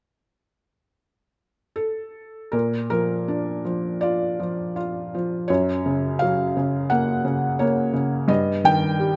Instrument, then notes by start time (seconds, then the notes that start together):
felt piano
1.76 A4
2.52 A#2 A#4
2.90 F3 A#4
3.28 D4
3.65 F3
4.01 F4 D5
4.40 F3
4.76 F4
5.15 F3
5.48 F#2 C#5
5.86 C#3
6.19 F#3 F5
6.57 C#3
6.90 A#3 F#5
7.25 C#3
7.59 A#3 C#5
7.93 C#3
8.28 G2 D#5
8.64 D#3 G5
8.99 G3